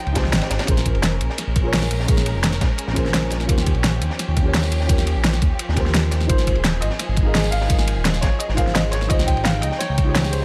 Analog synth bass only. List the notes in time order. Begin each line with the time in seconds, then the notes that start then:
0.07 C#2
0.33 G#1
0.50 G#1
0.68 A#1
0.95 F1
1.21 A#1
1.47 A#1
1.73 A#1
1.91 A#1
2.09 A#1
2.35 F1
2.61 A#1
2.88 A#1
3.14 A#1
3.31 A#1
3.49 D#2
3.75 A#1
4.01 D#2
4.28 D#2
4.54 D#2
4.72 D#2
4.89 D#2
5.16 A#1
5.42 D#2
5.69 D#2
5.95 D#2
6.12 D#2
6.30 G#1
6.56 D#1
6.82 G#1
7.09 G#1
7.35 G#1
7.53 G#1
7.70 G#1
7.96 D#1
8.23 G#1
8.49 G#1
8.75 G#1
8.93 G#1
9.10 C#2
9.36 G#1
9.63 C#2
9.89 C#2
10.15 C#2
10.33 C#2